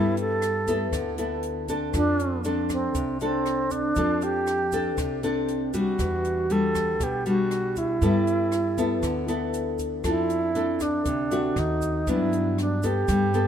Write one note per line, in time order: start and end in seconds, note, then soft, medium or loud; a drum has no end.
0.00 0.93 G2 medium
0.00 0.90 G3 soft
0.00 0.63 B3 medium
0.00 0.19 E4 medium
0.00 0.63 E4 soft
0.00 0.64 A4 medium
0.17 0.90 A4 medium
0.17 closed hi-hat soft
0.17 shaker soft
0.42 cross-stick medium
0.42 closed hi-hat soft
0.42 shaker soft
0.67 1.14 B3 medium
0.67 1.14 E4 medium
0.67 1.14 A4 medium
0.67 kick soft
0.67 closed hi-hat soft
0.67 shaker medium
0.93 1.90 D2 medium
0.93 1.92 D3 soft
0.93 kick medium
0.93 cross-stick medium
0.93 closed hi-hat medium
0.93 shaker medium
1.18 1.65 B3 medium
1.18 1.65 E4 medium
1.18 1.65 A4 medium
1.18 closed hi-hat soft
1.18 shaker soft
1.43 closed hi-hat soft
1.68 2.41 C4 medium
1.68 2.41 D4 medium
1.68 2.41 A4 medium
1.68 kick soft
1.68 closed hi-hat soft
1.68 shaker medium
1.94 2.95 F2 medium
1.94 2.93 F3 soft
1.94 2.42 D4 loud
1.94 kick medium
1.94 cross-stick medium
1.94 closed hi-hat medium
1.94 shaker medium
2.19 closed hi-hat soft
2.19 shaker soft
2.44 3.16 C4 soft
2.44 3.17 D4 medium
2.44 3.17 A4 medium
2.44 closed hi-hat soft
2.44 shaker soft
2.70 3.18 C4 medium
2.70 kick soft
2.70 cross-stick medium
2.70 closed hi-hat soft
2.70 shaker medium
2.95 3.92 C2 medium
2.95 3.94 C3 medium
2.95 kick medium
2.95 closed hi-hat soft
2.95 shaker medium
3.20 3.93 C4 medium
3.20 3.73 C4 medium
3.20 3.93 D4 medium
3.20 3.93 A4 medium
3.20 closed hi-hat soft
3.20 shaker soft
3.46 cross-stick medium
3.46 closed hi-hat soft
3.71 4.25 D4 medium
3.71 kick soft
3.71 closed hi-hat soft
3.71 shaker medium
3.95 4.98 F2 medium
3.95 4.96 F3 soft
3.95 4.69 C4 soft
3.95 4.69 D4 medium
3.95 4.69 A4 medium
3.95 kick soft
3.95 closed hi-hat soft
3.95 shaker medium
4.21 4.98 G4 loud
4.21 closed hi-hat soft
4.21 shaker soft
4.47 cross-stick medium
4.47 closed hi-hat soft
4.47 shaker soft
4.72 5.19 C4 medium
4.72 5.19 D4 medium
4.72 5.20 A4 medium
4.72 kick soft
4.72 closed hi-hat soft
4.72 shaker medium
4.98 5.95 C2 medium
4.98 5.97 C3 medium
4.98 kick medium
4.98 cross-stick medium
4.98 closed hi-hat medium
4.98 shaker medium
5.23 5.70 C4 medium
5.23 5.70 D4 medium
5.23 5.70 A4 medium
5.23 closed hi-hat soft
5.23 shaker soft
5.48 closed hi-hat soft
5.73 6.46 G3 medium
5.73 6.46 D4 medium
5.73 6.46 F#4 medium
5.73 6.54 F#4 medium
5.73 kick soft
5.73 closed hi-hat soft
5.73 shaker medium
5.99 7.00 E2 medium
5.99 6.98 E3 soft
5.99 kick soft
5.99 cross-stick medium
5.99 closed hi-hat medium
5.99 shaker medium
6.25 closed hi-hat soft
6.25 shaker soft
6.50 7.22 G3 soft
6.50 7.22 D4 medium
6.50 7.22 F#4 medium
6.50 7.05 A4 medium
6.50 closed hi-hat soft
6.75 kick soft
6.75 cross-stick medium
6.75 closed hi-hat soft
6.75 shaker medium
7.00 7.98 B1 medium
7.00 7.99 B2 medium
7.00 7.27 G4 medium
7.00 kick medium
7.00 closed hi-hat medium
7.00 shaker medium
7.26 7.98 G3 medium
7.26 7.98 D4 medium
7.26 7.98 F#4 medium
7.26 7.80 F#4 medium
7.26 closed hi-hat soft
7.26 shaker soft
7.51 cross-stick medium
7.51 closed hi-hat soft
7.76 9.29 E4 medium
7.76 kick soft
7.76 closed hi-hat soft
7.76 shaker medium
8.02 9.03 G2 medium
8.02 9.01 G3 soft
8.02 8.52 B3 soft
8.02 8.53 E4 soft
8.02 8.53 A4 soft
8.02 kick soft
8.02 closed hi-hat soft
8.02 shaker medium
8.27 closed hi-hat soft
8.27 shaker soft
8.52 cross-stick medium
8.52 closed hi-hat soft
8.52 shaker medium
8.78 9.24 B3 medium
8.78 9.25 E4 medium
8.78 9.25 A4 medium
8.78 kick soft
8.78 closed hi-hat soft
8.78 shaker medium
9.03 10.00 D2 medium
9.03 10.02 D3 soft
9.03 kick medium
9.03 cross-stick medium
9.03 closed hi-hat medium
9.03 shaker medium
9.28 10.00 B3 medium
9.28 10.00 E4 medium
9.28 10.01 A4 medium
9.28 closed hi-hat soft
9.28 shaker soft
9.54 closed hi-hat soft
9.54 shaker medium
9.79 kick soft
9.79 closed hi-hat soft
9.79 shaker medium
10.04 11.06 F2 medium
10.04 11.03 F3 soft
10.04 10.51 C4 soft
10.04 10.51 D4 medium
10.04 10.84 E4 medium
10.04 10.51 A4 medium
10.04 kick soft
10.04 cross-stick medium
10.04 closed hi-hat medium
10.04 shaker medium
10.30 closed hi-hat soft
10.30 shaker soft
10.55 11.06 C4 soft
10.55 11.06 D4 soft
10.55 11.06 A4 medium
10.55 closed hi-hat soft
10.80 11.60 D4 medium
10.80 kick soft
10.80 cross-stick soft
10.80 closed hi-hat soft
10.80 shaker medium
11.05 11.53 D2 medium
11.05 11.54 C3 medium
11.05 kick medium
11.05 closed hi-hat medium
11.05 shaker medium
11.31 12.03 A3 medium
11.31 12.03 C4 medium
11.31 12.04 F#4 medium
11.31 closed hi-hat soft
11.31 shaker soft
11.56 12.03 D#2 medium
11.56 12.11 D#4 medium
11.56 cross-stick medium
11.56 closed hi-hat soft
11.82 kick soft
11.82 closed hi-hat soft
11.82 shaker medium
12.07 13.04 G2 medium
12.07 13.06 G2 medium
12.07 12.79 F#3 soft
12.07 12.79 B3 soft
12.07 12.80 D4 medium
12.07 12.59 E4 medium
12.07 kick medium
12.07 closed hi-hat soft
12.07 shaker medium
12.32 closed hi-hat soft
12.32 shaker soft
12.58 12.87 D4 medium
12.58 cross-stick medium
12.58 closed hi-hat soft
12.83 13.30 B3 medium
12.83 13.47 G4 medium
12.83 13.30 A4 medium
12.83 kick soft
12.83 closed hi-hat soft
12.83 shaker medium
13.08 13.47 G2 medium
13.08 13.47 G3 medium
13.08 kick medium
13.08 cross-stick soft
13.08 closed hi-hat medium
13.08 shaker medium
13.34 13.47 B3 medium
13.34 13.47 A4 medium
13.34 closed hi-hat soft
13.34 shaker soft